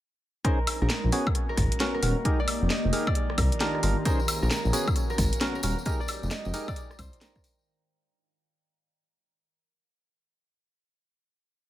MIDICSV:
0, 0, Header, 1, 7, 480
1, 0, Start_track
1, 0, Tempo, 451128
1, 475, Time_signature, 4, 2, 24, 8
1, 12442, End_track
2, 0, Start_track
2, 0, Title_t, "Harp"
2, 0, Program_c, 0, 46
2, 476, Note_on_c, 0, 70, 101
2, 865, Note_off_c, 0, 70, 0
2, 869, Note_on_c, 0, 70, 91
2, 1583, Note_off_c, 0, 70, 0
2, 1587, Note_on_c, 0, 70, 95
2, 2064, Note_off_c, 0, 70, 0
2, 2068, Note_on_c, 0, 70, 92
2, 2550, Note_on_c, 0, 74, 91
2, 2876, Note_on_c, 0, 75, 94
2, 2940, Note_off_c, 0, 74, 0
2, 3270, Note_on_c, 0, 74, 97
2, 3334, Note_off_c, 0, 75, 0
2, 3592, Note_off_c, 0, 70, 0
2, 3596, Note_on_c, 0, 70, 90
2, 3835, Note_on_c, 0, 67, 85
2, 4309, Note_off_c, 0, 70, 0
2, 4314, Note_on_c, 0, 70, 104
2, 4704, Note_off_c, 0, 70, 0
2, 4708, Note_on_c, 0, 70, 97
2, 5235, Note_off_c, 0, 74, 0
2, 5424, Note_off_c, 0, 70, 0
2, 5428, Note_on_c, 0, 70, 95
2, 5905, Note_off_c, 0, 70, 0
2, 5910, Note_on_c, 0, 70, 98
2, 6339, Note_off_c, 0, 67, 0
2, 6386, Note_on_c, 0, 74, 96
2, 6713, Note_on_c, 0, 75, 97
2, 6777, Note_off_c, 0, 74, 0
2, 7107, Note_on_c, 0, 74, 101
2, 7171, Note_off_c, 0, 75, 0
2, 7436, Note_on_c, 0, 72, 94
2, 7671, Note_off_c, 0, 70, 0
2, 7675, Note_on_c, 0, 70, 85
2, 9072, Note_off_c, 0, 74, 0
2, 9542, Note_off_c, 0, 72, 0
2, 9932, Note_off_c, 0, 70, 0
2, 12442, End_track
3, 0, Start_track
3, 0, Title_t, "Synth stab"
3, 0, Program_c, 1, 62
3, 474, Note_on_c, 1, 61, 88
3, 474, Note_on_c, 1, 72, 98
3, 475, Note_on_c, 1, 63, 81
3, 475, Note_on_c, 1, 68, 82
3, 629, Note_off_c, 1, 61, 0
3, 629, Note_off_c, 1, 63, 0
3, 629, Note_off_c, 1, 68, 0
3, 629, Note_off_c, 1, 72, 0
3, 1196, Note_on_c, 1, 59, 99
3, 1196, Note_on_c, 1, 61, 93
3, 1196, Note_on_c, 1, 66, 93
3, 1196, Note_on_c, 1, 68, 110
3, 1349, Note_off_c, 1, 59, 0
3, 1349, Note_off_c, 1, 61, 0
3, 1349, Note_off_c, 1, 66, 0
3, 1349, Note_off_c, 1, 68, 0
3, 1915, Note_on_c, 1, 61, 81
3, 1916, Note_on_c, 1, 59, 88
3, 1916, Note_on_c, 1, 66, 79
3, 1916, Note_on_c, 1, 70, 98
3, 2134, Note_off_c, 1, 59, 0
3, 2134, Note_off_c, 1, 61, 0
3, 2135, Note_off_c, 1, 66, 0
3, 2135, Note_off_c, 1, 70, 0
3, 2156, Note_on_c, 1, 59, 78
3, 2156, Note_on_c, 1, 61, 69
3, 2156, Note_on_c, 1, 66, 71
3, 2156, Note_on_c, 1, 70, 88
3, 2309, Note_off_c, 1, 59, 0
3, 2310, Note_off_c, 1, 61, 0
3, 2310, Note_off_c, 1, 66, 0
3, 2310, Note_off_c, 1, 70, 0
3, 2396, Note_on_c, 1, 63, 89
3, 2396, Note_on_c, 1, 67, 81
3, 2396, Note_on_c, 1, 68, 82
3, 2396, Note_on_c, 1, 70, 97
3, 2549, Note_off_c, 1, 63, 0
3, 2549, Note_off_c, 1, 67, 0
3, 2549, Note_off_c, 1, 68, 0
3, 2550, Note_off_c, 1, 70, 0
3, 3115, Note_on_c, 1, 63, 100
3, 3115, Note_on_c, 1, 67, 92
3, 3115, Note_on_c, 1, 68, 95
3, 3115, Note_on_c, 1, 70, 110
3, 3269, Note_off_c, 1, 63, 0
3, 3269, Note_off_c, 1, 67, 0
3, 3269, Note_off_c, 1, 68, 0
3, 3269, Note_off_c, 1, 70, 0
3, 3835, Note_on_c, 1, 62, 90
3, 3835, Note_on_c, 1, 65, 79
3, 3835, Note_on_c, 1, 70, 99
3, 3836, Note_on_c, 1, 63, 82
3, 4054, Note_off_c, 1, 62, 0
3, 4054, Note_off_c, 1, 63, 0
3, 4054, Note_off_c, 1, 65, 0
3, 4054, Note_off_c, 1, 70, 0
3, 4075, Note_on_c, 1, 62, 78
3, 4075, Note_on_c, 1, 63, 70
3, 4075, Note_on_c, 1, 65, 72
3, 4075, Note_on_c, 1, 70, 85
3, 4229, Note_off_c, 1, 62, 0
3, 4229, Note_off_c, 1, 63, 0
3, 4229, Note_off_c, 1, 65, 0
3, 4229, Note_off_c, 1, 70, 0
3, 4314, Note_on_c, 1, 61, 89
3, 4314, Note_on_c, 1, 63, 82
3, 4314, Note_on_c, 1, 68, 81
3, 4314, Note_on_c, 1, 72, 98
3, 4469, Note_off_c, 1, 61, 0
3, 4469, Note_off_c, 1, 63, 0
3, 4469, Note_off_c, 1, 68, 0
3, 4469, Note_off_c, 1, 72, 0
3, 5033, Note_on_c, 1, 59, 101
3, 5034, Note_on_c, 1, 61, 95
3, 5034, Note_on_c, 1, 66, 92
3, 5034, Note_on_c, 1, 68, 113
3, 5188, Note_off_c, 1, 59, 0
3, 5188, Note_off_c, 1, 61, 0
3, 5188, Note_off_c, 1, 66, 0
3, 5188, Note_off_c, 1, 68, 0
3, 5754, Note_on_c, 1, 61, 84
3, 5755, Note_on_c, 1, 59, 90
3, 5755, Note_on_c, 1, 66, 81
3, 5755, Note_on_c, 1, 70, 98
3, 5974, Note_off_c, 1, 59, 0
3, 5974, Note_off_c, 1, 61, 0
3, 5974, Note_off_c, 1, 66, 0
3, 5974, Note_off_c, 1, 70, 0
3, 5995, Note_on_c, 1, 59, 78
3, 5995, Note_on_c, 1, 61, 72
3, 5995, Note_on_c, 1, 66, 70
3, 5995, Note_on_c, 1, 70, 86
3, 6149, Note_off_c, 1, 59, 0
3, 6149, Note_off_c, 1, 61, 0
3, 6149, Note_off_c, 1, 66, 0
3, 6149, Note_off_c, 1, 70, 0
3, 6235, Note_on_c, 1, 63, 87
3, 6235, Note_on_c, 1, 67, 83
3, 6235, Note_on_c, 1, 68, 81
3, 6235, Note_on_c, 1, 70, 98
3, 6389, Note_off_c, 1, 63, 0
3, 6389, Note_off_c, 1, 67, 0
3, 6389, Note_off_c, 1, 68, 0
3, 6389, Note_off_c, 1, 70, 0
3, 6955, Note_on_c, 1, 63, 100
3, 6955, Note_on_c, 1, 67, 93
3, 6955, Note_on_c, 1, 68, 94
3, 6956, Note_on_c, 1, 70, 113
3, 7109, Note_off_c, 1, 63, 0
3, 7109, Note_off_c, 1, 67, 0
3, 7109, Note_off_c, 1, 68, 0
3, 7109, Note_off_c, 1, 70, 0
3, 12442, End_track
4, 0, Start_track
4, 0, Title_t, "Analog synth pad"
4, 0, Program_c, 2, 89
4, 474, Note_on_c, 2, 63, 87
4, 475, Note_on_c, 2, 56, 78
4, 475, Note_on_c, 2, 60, 72
4, 476, Note_on_c, 2, 61, 79
4, 1183, Note_off_c, 2, 56, 0
4, 1187, Note_off_c, 2, 63, 0
4, 1188, Note_off_c, 2, 60, 0
4, 1194, Note_on_c, 2, 58, 86
4, 1195, Note_on_c, 2, 66, 92
4, 1196, Note_on_c, 2, 56, 77
4, 2376, Note_off_c, 2, 61, 0
4, 2383, Note_off_c, 2, 56, 0
4, 2383, Note_off_c, 2, 66, 0
4, 2395, Note_on_c, 2, 56, 79
4, 2395, Note_on_c, 2, 63, 80
4, 2395, Note_on_c, 2, 67, 87
4, 3345, Note_off_c, 2, 67, 0
4, 3346, Note_off_c, 2, 56, 0
4, 3356, Note_on_c, 2, 62, 72
4, 3357, Note_on_c, 2, 65, 86
4, 4283, Note_off_c, 2, 58, 0
4, 4306, Note_off_c, 2, 62, 0
4, 4306, Note_off_c, 2, 65, 0
4, 4314, Note_on_c, 2, 61, 80
4, 4315, Note_on_c, 2, 68, 87
4, 4316, Note_on_c, 2, 58, 78
4, 5009, Note_off_c, 2, 63, 0
4, 5021, Note_off_c, 2, 58, 0
4, 5028, Note_off_c, 2, 68, 0
4, 5032, Note_on_c, 2, 66, 89
4, 5034, Note_on_c, 2, 58, 86
4, 5035, Note_on_c, 2, 59, 76
4, 6215, Note_off_c, 2, 61, 0
4, 6222, Note_off_c, 2, 66, 0
4, 6223, Note_off_c, 2, 59, 0
4, 6235, Note_on_c, 2, 56, 82
4, 6236, Note_on_c, 2, 63, 74
4, 6236, Note_on_c, 2, 67, 89
4, 7186, Note_off_c, 2, 56, 0
4, 7186, Note_off_c, 2, 63, 0
4, 7186, Note_off_c, 2, 67, 0
4, 7197, Note_on_c, 2, 63, 75
4, 7197, Note_on_c, 2, 65, 88
4, 7198, Note_on_c, 2, 62, 73
4, 8123, Note_off_c, 2, 58, 0
4, 8146, Note_off_c, 2, 63, 0
4, 8146, Note_off_c, 2, 65, 0
4, 8147, Note_off_c, 2, 62, 0
4, 12442, End_track
5, 0, Start_track
5, 0, Title_t, "Ambient pad"
5, 0, Program_c, 3, 92
5, 2395, Note_on_c, 3, 51, 73
5, 5515, Note_off_c, 3, 51, 0
5, 12442, End_track
6, 0, Start_track
6, 0, Title_t, "Detuned saw bass"
6, 0, Program_c, 4, 39
6, 870, Note_on_c, 4, 34, 101
6, 936, Note_off_c, 4, 34, 0
6, 1110, Note_on_c, 4, 34, 80
6, 1176, Note_off_c, 4, 34, 0
6, 1675, Note_on_c, 4, 32, 100
6, 1794, Note_off_c, 4, 32, 0
6, 2156, Note_on_c, 4, 27, 89
6, 2274, Note_off_c, 4, 27, 0
6, 2790, Note_on_c, 4, 29, 100
6, 2856, Note_off_c, 4, 29, 0
6, 3029, Note_on_c, 4, 29, 79
6, 3096, Note_off_c, 4, 29, 0
6, 3595, Note_on_c, 4, 36, 101
6, 3714, Note_off_c, 4, 36, 0
6, 4078, Note_on_c, 4, 31, 87
6, 4195, Note_off_c, 4, 31, 0
6, 4709, Note_on_c, 4, 34, 100
6, 4775, Note_off_c, 4, 34, 0
6, 4950, Note_on_c, 4, 34, 80
6, 5016, Note_off_c, 4, 34, 0
6, 5514, Note_on_c, 4, 32, 101
6, 5633, Note_off_c, 4, 32, 0
6, 5995, Note_on_c, 4, 27, 89
6, 6113, Note_off_c, 4, 27, 0
6, 6629, Note_on_c, 4, 29, 102
6, 6695, Note_off_c, 4, 29, 0
6, 6869, Note_on_c, 4, 29, 81
6, 6936, Note_off_c, 4, 29, 0
6, 7435, Note_on_c, 4, 36, 103
6, 7553, Note_off_c, 4, 36, 0
6, 12442, End_track
7, 0, Start_track
7, 0, Title_t, "Drums"
7, 474, Note_on_c, 9, 36, 116
7, 476, Note_on_c, 9, 42, 67
7, 581, Note_off_c, 9, 36, 0
7, 582, Note_off_c, 9, 42, 0
7, 715, Note_on_c, 9, 46, 114
7, 715, Note_on_c, 9, 76, 76
7, 822, Note_off_c, 9, 46, 0
7, 822, Note_off_c, 9, 76, 0
7, 955, Note_on_c, 9, 38, 123
7, 955, Note_on_c, 9, 42, 68
7, 1061, Note_off_c, 9, 38, 0
7, 1061, Note_off_c, 9, 42, 0
7, 1196, Note_on_c, 9, 37, 33
7, 1196, Note_on_c, 9, 46, 98
7, 1302, Note_off_c, 9, 37, 0
7, 1302, Note_off_c, 9, 46, 0
7, 1348, Note_on_c, 9, 36, 106
7, 1349, Note_on_c, 9, 76, 57
7, 1436, Note_on_c, 9, 37, 32
7, 1436, Note_on_c, 9, 42, 64
7, 1454, Note_off_c, 9, 36, 0
7, 1456, Note_off_c, 9, 76, 0
7, 1542, Note_off_c, 9, 37, 0
7, 1542, Note_off_c, 9, 42, 0
7, 1675, Note_on_c, 9, 36, 105
7, 1676, Note_on_c, 9, 37, 69
7, 1676, Note_on_c, 9, 46, 110
7, 1781, Note_off_c, 9, 36, 0
7, 1783, Note_off_c, 9, 37, 0
7, 1783, Note_off_c, 9, 46, 0
7, 1829, Note_on_c, 9, 42, 70
7, 1916, Note_off_c, 9, 42, 0
7, 1916, Note_on_c, 9, 38, 119
7, 1916, Note_on_c, 9, 42, 68
7, 2023, Note_off_c, 9, 38, 0
7, 2023, Note_off_c, 9, 42, 0
7, 2155, Note_on_c, 9, 46, 98
7, 2262, Note_off_c, 9, 46, 0
7, 2395, Note_on_c, 9, 36, 120
7, 2396, Note_on_c, 9, 42, 64
7, 2501, Note_off_c, 9, 36, 0
7, 2502, Note_off_c, 9, 42, 0
7, 2635, Note_on_c, 9, 46, 107
7, 2635, Note_on_c, 9, 76, 74
7, 2741, Note_off_c, 9, 46, 0
7, 2741, Note_off_c, 9, 76, 0
7, 2875, Note_on_c, 9, 38, 125
7, 2875, Note_on_c, 9, 42, 65
7, 2982, Note_off_c, 9, 38, 0
7, 2982, Note_off_c, 9, 42, 0
7, 3115, Note_on_c, 9, 46, 94
7, 3222, Note_off_c, 9, 46, 0
7, 3268, Note_on_c, 9, 36, 110
7, 3269, Note_on_c, 9, 76, 59
7, 3354, Note_on_c, 9, 42, 63
7, 3374, Note_off_c, 9, 36, 0
7, 3376, Note_off_c, 9, 76, 0
7, 3461, Note_off_c, 9, 42, 0
7, 3509, Note_on_c, 9, 37, 72
7, 3595, Note_on_c, 9, 36, 110
7, 3595, Note_on_c, 9, 46, 107
7, 3595, Note_on_c, 9, 76, 79
7, 3615, Note_off_c, 9, 37, 0
7, 3701, Note_off_c, 9, 36, 0
7, 3701, Note_off_c, 9, 46, 0
7, 3701, Note_off_c, 9, 76, 0
7, 3748, Note_on_c, 9, 42, 65
7, 3835, Note_off_c, 9, 42, 0
7, 3835, Note_on_c, 9, 38, 121
7, 3835, Note_on_c, 9, 42, 63
7, 3941, Note_off_c, 9, 38, 0
7, 3941, Note_off_c, 9, 42, 0
7, 3988, Note_on_c, 9, 37, 53
7, 4075, Note_on_c, 9, 46, 96
7, 4095, Note_off_c, 9, 37, 0
7, 4181, Note_off_c, 9, 46, 0
7, 4313, Note_on_c, 9, 54, 51
7, 4314, Note_on_c, 9, 42, 64
7, 4315, Note_on_c, 9, 36, 122
7, 4419, Note_off_c, 9, 54, 0
7, 4420, Note_off_c, 9, 42, 0
7, 4421, Note_off_c, 9, 36, 0
7, 4465, Note_on_c, 9, 54, 29
7, 4554, Note_off_c, 9, 54, 0
7, 4554, Note_on_c, 9, 54, 101
7, 4555, Note_on_c, 9, 46, 103
7, 4555, Note_on_c, 9, 76, 78
7, 4660, Note_off_c, 9, 54, 0
7, 4661, Note_off_c, 9, 46, 0
7, 4661, Note_off_c, 9, 76, 0
7, 4713, Note_on_c, 9, 54, 42
7, 4795, Note_on_c, 9, 38, 127
7, 4795, Note_on_c, 9, 42, 64
7, 4808, Note_off_c, 9, 54, 0
7, 4808, Note_on_c, 9, 54, 53
7, 4902, Note_off_c, 9, 38, 0
7, 4902, Note_off_c, 9, 42, 0
7, 4915, Note_off_c, 9, 54, 0
7, 4949, Note_on_c, 9, 54, 27
7, 5035, Note_on_c, 9, 37, 32
7, 5035, Note_on_c, 9, 46, 93
7, 5042, Note_off_c, 9, 54, 0
7, 5042, Note_on_c, 9, 54, 104
7, 5141, Note_off_c, 9, 37, 0
7, 5141, Note_off_c, 9, 46, 0
7, 5148, Note_off_c, 9, 54, 0
7, 5188, Note_on_c, 9, 36, 112
7, 5188, Note_on_c, 9, 76, 60
7, 5190, Note_on_c, 9, 54, 41
7, 5274, Note_on_c, 9, 37, 31
7, 5274, Note_on_c, 9, 42, 61
7, 5280, Note_off_c, 9, 54, 0
7, 5280, Note_on_c, 9, 54, 61
7, 5294, Note_off_c, 9, 36, 0
7, 5294, Note_off_c, 9, 76, 0
7, 5381, Note_off_c, 9, 37, 0
7, 5381, Note_off_c, 9, 42, 0
7, 5387, Note_off_c, 9, 54, 0
7, 5424, Note_on_c, 9, 54, 28
7, 5514, Note_on_c, 9, 36, 114
7, 5514, Note_on_c, 9, 37, 69
7, 5514, Note_on_c, 9, 46, 104
7, 5521, Note_off_c, 9, 54, 0
7, 5521, Note_on_c, 9, 54, 105
7, 5621, Note_off_c, 9, 36, 0
7, 5621, Note_off_c, 9, 37, 0
7, 5621, Note_off_c, 9, 46, 0
7, 5627, Note_off_c, 9, 54, 0
7, 5666, Note_on_c, 9, 54, 39
7, 5668, Note_on_c, 9, 42, 65
7, 5752, Note_off_c, 9, 54, 0
7, 5752, Note_on_c, 9, 54, 57
7, 5755, Note_off_c, 9, 42, 0
7, 5755, Note_on_c, 9, 38, 125
7, 5755, Note_on_c, 9, 42, 65
7, 5858, Note_off_c, 9, 54, 0
7, 5861, Note_off_c, 9, 38, 0
7, 5861, Note_off_c, 9, 42, 0
7, 5908, Note_on_c, 9, 54, 31
7, 5989, Note_off_c, 9, 54, 0
7, 5989, Note_on_c, 9, 54, 95
7, 5995, Note_on_c, 9, 46, 92
7, 6095, Note_off_c, 9, 54, 0
7, 6101, Note_off_c, 9, 46, 0
7, 6155, Note_on_c, 9, 54, 38
7, 6230, Note_off_c, 9, 54, 0
7, 6230, Note_on_c, 9, 54, 59
7, 6234, Note_on_c, 9, 36, 127
7, 6235, Note_on_c, 9, 42, 62
7, 6336, Note_off_c, 9, 54, 0
7, 6341, Note_off_c, 9, 36, 0
7, 6341, Note_off_c, 9, 42, 0
7, 6394, Note_on_c, 9, 54, 29
7, 6471, Note_off_c, 9, 54, 0
7, 6471, Note_on_c, 9, 54, 86
7, 6476, Note_on_c, 9, 46, 101
7, 6476, Note_on_c, 9, 76, 82
7, 6577, Note_off_c, 9, 54, 0
7, 6582, Note_off_c, 9, 46, 0
7, 6582, Note_off_c, 9, 76, 0
7, 6630, Note_on_c, 9, 54, 39
7, 6709, Note_off_c, 9, 54, 0
7, 6709, Note_on_c, 9, 54, 52
7, 6715, Note_on_c, 9, 38, 127
7, 6715, Note_on_c, 9, 42, 66
7, 6816, Note_off_c, 9, 54, 0
7, 6822, Note_off_c, 9, 38, 0
7, 6822, Note_off_c, 9, 42, 0
7, 6864, Note_on_c, 9, 54, 29
7, 6955, Note_on_c, 9, 46, 87
7, 6956, Note_off_c, 9, 54, 0
7, 6956, Note_on_c, 9, 54, 94
7, 7061, Note_off_c, 9, 46, 0
7, 7063, Note_off_c, 9, 54, 0
7, 7108, Note_on_c, 9, 36, 110
7, 7108, Note_on_c, 9, 76, 64
7, 7109, Note_on_c, 9, 54, 43
7, 7195, Note_on_c, 9, 42, 64
7, 7196, Note_off_c, 9, 54, 0
7, 7196, Note_on_c, 9, 54, 62
7, 7214, Note_off_c, 9, 36, 0
7, 7214, Note_off_c, 9, 76, 0
7, 7301, Note_off_c, 9, 42, 0
7, 7302, Note_off_c, 9, 54, 0
7, 7349, Note_on_c, 9, 37, 67
7, 7351, Note_on_c, 9, 54, 30
7, 7435, Note_on_c, 9, 36, 110
7, 7435, Note_on_c, 9, 46, 102
7, 7435, Note_on_c, 9, 76, 84
7, 7437, Note_off_c, 9, 54, 0
7, 7437, Note_on_c, 9, 54, 106
7, 7455, Note_off_c, 9, 37, 0
7, 7541, Note_off_c, 9, 36, 0
7, 7541, Note_off_c, 9, 46, 0
7, 7541, Note_off_c, 9, 76, 0
7, 7544, Note_off_c, 9, 54, 0
7, 7588, Note_on_c, 9, 42, 66
7, 7588, Note_on_c, 9, 54, 41
7, 7675, Note_off_c, 9, 42, 0
7, 7675, Note_on_c, 9, 38, 125
7, 7675, Note_on_c, 9, 42, 65
7, 7677, Note_off_c, 9, 54, 0
7, 7677, Note_on_c, 9, 54, 57
7, 7781, Note_off_c, 9, 38, 0
7, 7781, Note_off_c, 9, 42, 0
7, 7784, Note_off_c, 9, 54, 0
7, 7824, Note_on_c, 9, 54, 30
7, 7828, Note_on_c, 9, 36, 64
7, 7830, Note_on_c, 9, 37, 52
7, 7915, Note_on_c, 9, 46, 89
7, 7918, Note_off_c, 9, 54, 0
7, 7918, Note_on_c, 9, 54, 97
7, 7934, Note_off_c, 9, 36, 0
7, 7936, Note_off_c, 9, 37, 0
7, 8021, Note_off_c, 9, 46, 0
7, 8024, Note_off_c, 9, 54, 0
7, 8073, Note_on_c, 9, 54, 39
7, 8180, Note_off_c, 9, 54, 0
7, 12442, End_track
0, 0, End_of_file